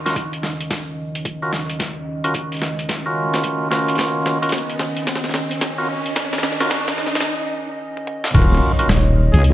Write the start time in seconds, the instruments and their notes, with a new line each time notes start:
Already playing: analog synth pad D#3 C#4 D#5, riser
0.06 tonewheel organ C#4 F4 F#4 A#4, snare, closed hi-hat
0.16 kick, closed hi-hat
0.33 closed hi-hat
0.43 snare
0.61 closed hi-hat
0.71 kick, snare, closed hi-hat
1.15 closed hi-hat
1.25 kick, closed hi-hat
1.42 tonewheel organ C#4 F4 F#4 A#4
1.53 snare
1.70 closed hi-hat
1.80 kick, snare, closed hi-hat
2.24 tonewheel organ C#4 F4 F#4 A#4, closed hi-hat
2.34 kick, closed hi-hat
2.52 closed hi-hat
2.54 closed hi-hat
2.57 closed hi-hat
2.59 snare, closed hi-hat
2.79 closed hi-hat
2.89 kick, snare, closed hi-hat
3.06 tonewheel organ C#4 F4 F#4 A#4
3.34 snare, closed hi-hat
3.43 kick, closed hi-hat
3.71 tonewheel organ C#4 F4 F#4 A#4, snare
3.88 closed hi-hat
3.95 kick, snare, closed hi-hat
3.99 closed hi-hat
4.04 closed hi-hat
4.08 closed hi-hat
4.26 snare
4.42 tonewheel organ C#4 F4 F#4 A#4, closed hi-hat
4.49 snare, closed hi-hat
4.52 kick, closed hi-hat
4.58 closed hi-hat
4.70 closed hi-hat
4.79 snare
4.97 closed hi-hat
5.07 kick, snare, closed hi-hat
5.15 snare
5.24 snare
5.29 snare
5.34 snare
5.51 closed hi-hat
5.61 kick, snare, closed hi-hat
5.78 tonewheel organ C#4 F4 F#4 A#4
6.06 closed hi-hat
6.16 kick, snare, closed hi-hat
6.33 snare
6.38 snare
6.43 snare
6.52 snare
6.60 tonewheel organ C#4 F4 F#4 A#4, snare, closed hi-hat
6.70 kick, snare, closed hi-hat
6.88 snare, closed hi-hat
6.98 snare
7.07 snare
7.15 snare, closed hi-hat
7.20 snare, closed hi-hat
7.22 closed hi-hat
7.24 closed hi-hat
7.97 high tom
8.07 mid tom
8.24 snare
8.34 wobble bass D#1, tonewheel organ C#4 F4 F#4 A#4, analog synth pad D#4 C#5 D#5, kick, closed hi-hat, crash, impact
8.79 tonewheel organ C#4 F4 F#4 A#4, closed hi-hat
8.89 analog synth bass D#1, snare, closed hi-hat
9.33 wobble bass C#2, trumpet G#4, closed hi-hat
9.44 closed hi-hat